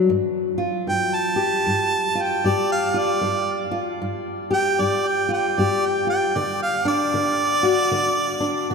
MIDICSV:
0, 0, Header, 1, 3, 480
1, 0, Start_track
1, 0, Tempo, 782269
1, 55, Time_signature, 4, 2, 24, 8
1, 5366, End_track
2, 0, Start_track
2, 0, Title_t, "Harmonica"
2, 0, Program_c, 0, 22
2, 546, Note_on_c, 0, 79, 97
2, 705, Note_on_c, 0, 81, 97
2, 714, Note_off_c, 0, 79, 0
2, 1362, Note_on_c, 0, 79, 81
2, 1371, Note_off_c, 0, 81, 0
2, 1517, Note_on_c, 0, 74, 89
2, 1526, Note_off_c, 0, 79, 0
2, 1661, Note_off_c, 0, 74, 0
2, 1668, Note_on_c, 0, 77, 90
2, 1833, Note_on_c, 0, 74, 104
2, 1842, Note_off_c, 0, 77, 0
2, 2289, Note_off_c, 0, 74, 0
2, 2782, Note_on_c, 0, 79, 112
2, 2952, Note_on_c, 0, 74, 94
2, 2961, Note_off_c, 0, 79, 0
2, 3114, Note_on_c, 0, 79, 90
2, 3123, Note_off_c, 0, 74, 0
2, 3259, Note_off_c, 0, 79, 0
2, 3274, Note_on_c, 0, 79, 83
2, 3431, Note_on_c, 0, 74, 100
2, 3441, Note_off_c, 0, 79, 0
2, 3596, Note_on_c, 0, 79, 88
2, 3605, Note_off_c, 0, 74, 0
2, 3738, Note_off_c, 0, 79, 0
2, 3742, Note_on_c, 0, 79, 92
2, 3918, Note_on_c, 0, 74, 87
2, 3927, Note_off_c, 0, 79, 0
2, 4062, Note_off_c, 0, 74, 0
2, 4065, Note_on_c, 0, 77, 93
2, 4215, Note_off_c, 0, 77, 0
2, 4222, Note_on_c, 0, 74, 116
2, 5366, Note_off_c, 0, 74, 0
2, 5366, End_track
3, 0, Start_track
3, 0, Title_t, "Steel-string acoustic guitar"
3, 0, Program_c, 1, 25
3, 0, Note_on_c, 1, 62, 60
3, 0, Note_on_c, 1, 66, 73
3, 59, Note_on_c, 1, 43, 75
3, 62, Note_off_c, 1, 66, 0
3, 352, Note_off_c, 1, 62, 0
3, 354, Note_on_c, 1, 65, 60
3, 500, Note_off_c, 1, 43, 0
3, 535, Note_on_c, 1, 43, 64
3, 834, Note_on_c, 1, 67, 67
3, 977, Note_off_c, 1, 43, 0
3, 1022, Note_on_c, 1, 43, 70
3, 1312, Note_off_c, 1, 65, 0
3, 1321, Note_on_c, 1, 65, 60
3, 1461, Note_off_c, 1, 43, 0
3, 1494, Note_off_c, 1, 67, 0
3, 1499, Note_on_c, 1, 43, 69
3, 1506, Note_on_c, 1, 67, 71
3, 1796, Note_off_c, 1, 65, 0
3, 1805, Note_on_c, 1, 65, 56
3, 1939, Note_off_c, 1, 43, 0
3, 1958, Note_off_c, 1, 65, 0
3, 1958, Note_off_c, 1, 67, 0
3, 1971, Note_on_c, 1, 43, 74
3, 2279, Note_on_c, 1, 65, 65
3, 2416, Note_off_c, 1, 43, 0
3, 2464, Note_on_c, 1, 43, 73
3, 2765, Note_on_c, 1, 67, 71
3, 2902, Note_off_c, 1, 43, 0
3, 2941, Note_on_c, 1, 43, 75
3, 3236, Note_off_c, 1, 65, 0
3, 3243, Note_on_c, 1, 65, 59
3, 3381, Note_off_c, 1, 43, 0
3, 3421, Note_off_c, 1, 67, 0
3, 3424, Note_on_c, 1, 43, 74
3, 3431, Note_on_c, 1, 67, 65
3, 3716, Note_off_c, 1, 65, 0
3, 3723, Note_on_c, 1, 65, 58
3, 3863, Note_off_c, 1, 43, 0
3, 3878, Note_off_c, 1, 65, 0
3, 3881, Note_off_c, 1, 67, 0
3, 3901, Note_on_c, 1, 50, 77
3, 4204, Note_on_c, 1, 62, 62
3, 4342, Note_off_c, 1, 50, 0
3, 4380, Note_on_c, 1, 50, 69
3, 4681, Note_on_c, 1, 66, 70
3, 4822, Note_off_c, 1, 50, 0
3, 4856, Note_on_c, 1, 50, 76
3, 5149, Note_off_c, 1, 62, 0
3, 5156, Note_on_c, 1, 62, 62
3, 5300, Note_off_c, 1, 50, 0
3, 5336, Note_off_c, 1, 66, 0
3, 5339, Note_on_c, 1, 50, 74
3, 5344, Note_on_c, 1, 66, 65
3, 5366, Note_off_c, 1, 50, 0
3, 5366, Note_off_c, 1, 62, 0
3, 5366, Note_off_c, 1, 66, 0
3, 5366, End_track
0, 0, End_of_file